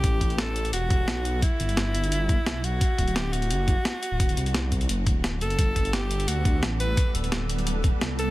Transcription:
<<
  \new Staff \with { instrumentName = "Alto saxophone" } { \time 4/4 \key g \major \tempo 4 = 173 g'4 a'4 fis'2 | e'2.~ e'8 fis'8~ | fis'4 g'8 fis'2~ fis'8~ | fis'2 r4. a'8~ |
a'4 g'4 fis'4 r8 b'8~ | b'8 r2. a'8 | }
  \new Staff \with { instrumentName = "Ambient pad" } { \time 4/4 \key g \major r1 | r1 | r1 | r1 |
<g b a'>1~ | <g b a'>2.~ <g b a'>8 r8 | }
  \new Staff \with { instrumentName = "Detuned saw bass" } { \clef bass \time 4/4 \key g \major a,,2 e,,4 b,,4 | r8 g,,2~ g,,16 r16 b,,4 | r8 d,,4. fis,,8. r4 d,,16~ | d,,8 c,4. fis,,8 d,,4 fis,,8 |
g,,2 d,4 a,,4 | r8 d,,2~ d,,16 r16 c,4 | }
  \new DrumStaff \with { instrumentName = "Drums" } \drummode { \time 4/4 <hh bd>8 <hh bd>16 hh16 <hh sn>8 hh16 hh16 hh8 <hh bd>8 <hh sn>8 hh8 | <hh bd>8 hh16 hh16 <hh sn>8 hh16 hh16 hh8 <hh bd>8 <hh sn>8 hh8 | <hh bd>8 <hh bd>16 hh16 <hh sn>8 hh16 hh16 hh8 <hh bd>8 <hh sn>8 hh8 | <hh bd>16 hh16 hh16 hh16 <hh sn>8 <hh bd>16 hh16 hh8 <hh bd>8 <hh sn>8 hh16 hh16 |
<hh bd>8 <hh bd>16 hh16 <hh sn>8 hh16 hh16 hh8 <hh bd>8 <hh sn>8 hh8 | <hh bd>8 hh16 hh16 <hh sn>8 hh16 hh16 hh8 <hh bd>8 <hh sn>8 hh8 | }
>>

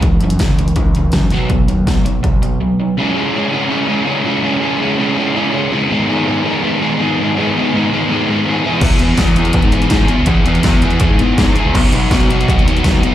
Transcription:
<<
  \new Staff \with { instrumentName = "Overdriven electric guitar" } { \clef bass \time 4/4 \key cis \minor \tempo 4 = 164 <cis e>8 <cis e>8 <cis e>8 <cis e>8 <cis e>8 <cis e>8 <cis e>8 <b, fis b>8 | <b, fis>8 <b, fis>8 <b, fis>8 <b, fis>8 <b, fis>8 <b, fis>8 <b, fis>8 <b, fis>8 | <cis gis cis' e' gis'>8 <cis gis cis' e' gis'>8 <cis gis cis' e' gis'>8 <cis gis cis' e' gis'>8 <cis gis cis' e' gis'>8 <cis gis cis' e' gis'>8 <cis gis cis' e' gis'>8 <cis gis cis' e' gis'>8 | <cis gis cis' e' gis'>8 <cis gis cis' e' gis'>8 <cis gis cis' e' gis'>8 <cis gis cis' e' gis'>8 <cis gis cis' e' gis'>8 <cis gis cis' e' gis'>8 <cis gis cis' e' gis'>8 <cis gis cis' e' gis'>8 |
<gis, dis gis b dis' gis'>8 <gis, dis gis b dis' gis'>8 <gis, dis gis b dis' gis'>8 <gis, dis gis b dis' gis'>8 <gis, dis gis b dis' gis'>8 <gis, dis gis b dis' gis'>8 <gis, dis gis b dis' gis'>8 <gis, dis gis b dis' gis'>8 | <gis, dis gis b dis' gis'>8 <gis, dis gis b dis' gis'>8 <gis, dis gis b dis' gis'>8 <gis, dis gis b dis' gis'>8 <gis, dis gis b dis' gis'>8 <gis, dis gis b dis' gis'>8 <gis, dis gis b dis' gis'>8 <e, b, e b e' gis'>8 | <e, b, e b e' gis'>8 <e, b, e b e' gis'>8 <e, b, e b e' gis'>8 <e, b, e b e' gis'>8 <e, b, e b e' gis'>8 <e, b, e b e' gis'>8 <e, b, e b e' gis'>8 <e, b, e b e' gis'>8 | <e, b, e b e' gis'>8 <e, b, e b e' gis'>8 <e, b, e b e' gis'>8 <e, b, e b e' gis'>8 <e, b, e b e' gis'>8 <e, b, e b e' gis'>8 <e, b, e b e' gis'>8 <e, b, e b e' gis'>8 |
<b, fis b dis' fis'>8 <b, fis b dis' fis'>8 <b, fis b dis' fis'>8 <b, fis b dis' fis'>8 <b, fis b dis' fis'>8 <b, fis b dis' fis'>8 <b, fis b dis' fis'>8 <b, fis b dis' fis'>8 | }
  \new Staff \with { instrumentName = "Fingered electric bass" } { \clef bass \time 4/4 \key cis \minor cis,8 fis,8 r16 cis,8. cis,4 fis,8 b,,8~ | b,,8 dis,8 r16 b,,8. b,,4 r4 | r1 | r1 |
r1 | r1 | e,16 r16 e,8 e,4~ e,16 gis,8. gis,8 r16 cis,16 | e,16 r16 e,8 e,4~ e,16 gis,8. gis,8 r16 cis,16 |
b,,16 r16 b,,8 b,,4~ b,,16 dis,8. dis,8 r16 gis,,16 | }
  \new DrumStaff \with { instrumentName = "Drums" } \drummode { \time 4/4 <hh bd>8 hh16 hh16 <hh bd sn>8 hh16 hh16 <hh bd>8 hh8 <hh bd sn>8 <hh sn>8 | <hh bd>8 hh8 <hh bd sn>8 hh8 <hh bd>8 hh8 r4 | r4 r4 r4 r4 | r4 r4 r4 r4 |
r4 r4 r4 r4 | r4 r4 r4 r4 | <cymc bd>8 hh8 <hh bd sn>16 hh16 hh16 hh16 <hh bd>16 hh16 hh16 hh16 <hh bd sn>8 hh8 | <hh bd>8 hh16 hh16 <hh bd sn>8 hh16 hh16 <hh bd>8 hh8 <hh bd sn>8 hh8 |
<cymc bd>8 hh8 <hh bd sn>16 hh16 hh16 hh16 <hh bd>16 hh16 hh16 hh16 <hh bd sn>8 hh8 | }
>>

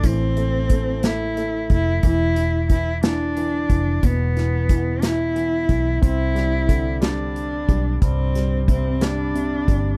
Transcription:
<<
  \new Staff \with { instrumentName = "Cello" } { \time 6/8 \key e \phrygian \tempo 4. = 60 c'4. e'4 e'8 | e'4 e'8 d'4. | b4. e'4. | e'4. d'4. |
c'4 c'8 d'4. | }
  \new Staff \with { instrumentName = "Grand piano" } { \clef bass \time 6/8 \key e \phrygian <e a>8 a8 a8 a8 a8 a8 | e8 e8 e8 e8 e8 e8 | b,8 e8 e8 e8 e8 e8 | c'8 g8 d8 g4 g8 |
g,8 g8 c8 g8 c8 g8 | }
  \new Staff \with { instrumentName = "Fingered electric bass" } { \clef bass \time 6/8 \key e \phrygian a,,2~ a,,8 f,,8 | e,,2~ e,,8 f,,8 | e,,2~ e,,8 b,,8 | c,2~ c,8 b,,8 |
c,2~ c,8 g,,8 | }
  \new DrumStaff \with { instrumentName = "Drums" } \drummode { \time 6/8 <hh bd>8 hh8 <hh bd>8 <hh sn>8 hh8 <hh bd>8 | <hh bd>8 hh8 <hh bd>8 <hh sn>8 hh8 <hh bd>8 | <hh bd>8 <hh sn>8 <hh bd>8 <hh sn>8 hh8 <hh bd>8 | <hh bd>8 <hh sn>8 <hh bd>8 <hh sn>8 hh8 <hh bd>8 |
<hh bd>8 <hh sn>8 <hh bd>8 <hh sn>8 hh8 <hh bd>8 | }
>>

